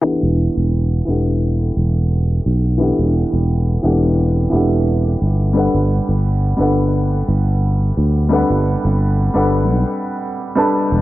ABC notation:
X:1
M:4/4
L:1/16
Q:"Swing 16ths" 1/4=87
K:Em
V:1 name="Grand piano"
[E,B,DGA]6 [E,B,DGAf]8- [E,B,DGAf]2 | [E,B,DGAf]6 [E,B,DGAf] z3 [E,B,DGAf]6 | [G,DABf]6 [G,DABf]8- [G,DABf]2 | [G,DABf]6 [G,DABf] z6 [G,DABa]3 |]
V:2 name="Fretless electric bass" clef=bass
z E,,, z E,,,3 E,,,4 E,,,4 B,,,2- | B,,, E,,, z E,,,3 E,,,4 E,,,4 G,,,2- | G,,, G,,, z G,,,3 G,,,4 G,,,4 D,,2- | D,, G,,, z G,,,3 G,,,2 B,,, z6 E,,, |]